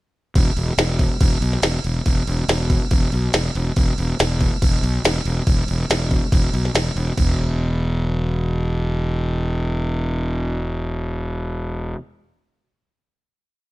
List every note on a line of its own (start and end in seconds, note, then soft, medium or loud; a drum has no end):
0.35 0.50 E1 medium
0.35 kick loud
0.35 crash medium
0.57 0.71 E1 medium
0.57 crash medium
0.78 1.07 E1 medium
0.78 snare loud
0.78 crash medium
0.99 kick medium
0.99 crash medium
1.21 1.35 E1 medium
1.21 kick loud
1.21 crash medium
1.41 1.56 B1 medium
1.41 crash medium
1.53 snare soft
1.62 1.77 E1 medium
1.62 snare loud
1.62 crash medium
1.84 1.99 E1 medium
1.84 crash medium
2.06 2.20 E1 loud
2.06 kick loud
2.06 crash medium
2.27 2.42 E1 medium
2.27 crash medium
2.48 2.77 E1 medium
2.48 snare loud
2.48 crash medium
2.70 kick medium
2.70 crash medium
2.91 3.06 E1 medium
2.91 kick loud
2.91 crash medium
3.12 3.27 B1 medium
3.12 crash medium
3.33 3.48 E1 medium
3.33 snare loud
3.33 crash medium
3.55 3.70 E1 medium
3.55 crash medium
3.76 3.91 E1 medium
3.76 kick loud
3.76 crash medium
3.98 4.12 E1 medium
3.98 crash medium
4.19 4.49 E1 medium
4.19 snare loud
4.19 crash medium
4.40 kick medium
4.40 crash medium
4.62 4.76 E1 medium
4.62 kick loud
4.62 crash loud
4.83 4.97 B1 medium
4.83 crash medium
5.04 5.19 E1 loud
5.04 snare loud
5.04 crash medium
5.25 5.40 E1 medium
5.25 crash medium
5.47 5.62 E1 loud
5.47 kick loud
5.47 crash medium
5.68 5.83 E1 medium
5.68 crash medium
5.90 6.19 E1 medium
5.90 snare loud
5.90 crash medium
6.11 kick medium
6.11 crash medium
6.32 6.47 E1 loud
6.32 kick loud
6.32 crash medium
6.53 6.68 B1 medium
6.53 crash medium
6.65 snare soft
6.75 6.89 E1 medium
6.75 snare loud
6.75 crash medium
6.96 7.10 E1 medium
6.96 crash medium
7.17 11.94 E1 medium
7.17 kick loud
7.17 floor tom loud
7.17 crash medium